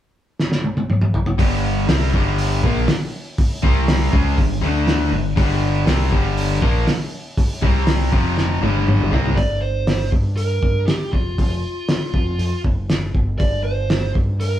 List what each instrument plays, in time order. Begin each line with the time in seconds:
0.40 snare
0.52 snare
0.64 high tom
0.77 high tom
0.90 mid tom
1.02 mid tom
1.14 floor tom
1.26 floor tom
1.38 fingered electric bass G1, overdriven electric guitar G2 D3 G3, kick, open hi-hat
1.88 fingered electric bass C2, overdriven electric guitar C3 G3 C4, snare, open hi-hat
2.13 fingered electric bass G1, overdriven electric guitar G2 D3 G3, kick
2.38 open hi-hat
2.63 fingered electric bass A#1, overdriven electric guitar A#2 F3 A#3, kick
2.88 snare, open hi-hat
3.38 kick, open hi-hat
3.63 fingered electric bass C2, overdriven electric guitar C3 G3 C4, kick
3.88 snare, open hi-hat
4.12 fingered electric bass C#2, overdriven electric guitar C#3 G#3 C#4, kick
4.37 fingered electric bass G1, overdriven electric guitar G2 D3, kick, open hi-hat
4.61 fingered electric bass D2, overdriven electric guitar D3 A3 D4
4.88 snare, open hi-hat
5.11 fingered electric bass G1, overdriven electric guitar G2 D3
5.36 fingered electric bass G1, overdriven electric guitar G2 D3 G3, kick, open hi-hat
5.86 fingered electric bass C2, overdriven electric guitar C3 G3 C4, snare, open hi-hat
6.11 fingered electric bass G1, overdriven electric guitar G2 D3 G3, kick
6.37 open hi-hat
6.61 fingered electric bass A#1, overdriven electric guitar A#2 F3 A#3, kick
6.87 snare, open hi-hat
7.37 kick, open hi-hat
7.62 fingered electric bass C2, overdriven electric guitar C3 G3 C4, kick
7.87 snare, open hi-hat
8.12 fingered electric bass F1, overdriven electric guitar F2 C3 F3, kick
8.38 snare
8.62 fingered electric bass G1, overdriven electric guitar G2 D3 G3, high tom
8.88 mid tom
9.01 mid tom
9.11 fingered electric bass C2, overdriven electric guitar C3 G3 C4, floor tom
9.26 floor tom
9.36 fingered electric bass G1, lead electric guitar D5, kick, open hi-hat
9.61 lead electric guitar C5
9.87 snare, open hi-hat
10.12 fingered electric bass G2, kick
10.37 lead electric guitar A#4, open hi-hat
10.63 fingered electric bass G2, kick
10.86 lead electric guitar G4, snare, open hi-hat
11.12 fingered electric bass F1, lead electric guitar F4, kick
11.38 fingered electric bass F1, kick, open hi-hat
11.89 snare, open hi-hat
12.14 fingered electric bass F1, kick
12.38 fingered electric bass F2, open hi-hat
12.64 fingered electric bass F#1, kick
12.90 snare, open hi-hat
13.15 fingered electric bass G1, kick
13.38 fingered electric bass G1, lead electric guitar D5, kick, open hi-hat
13.64 lead electric guitar C5
13.90 snare, open hi-hat
14.15 fingered electric bass G2, kick
14.40 lead electric guitar A#4, open hi-hat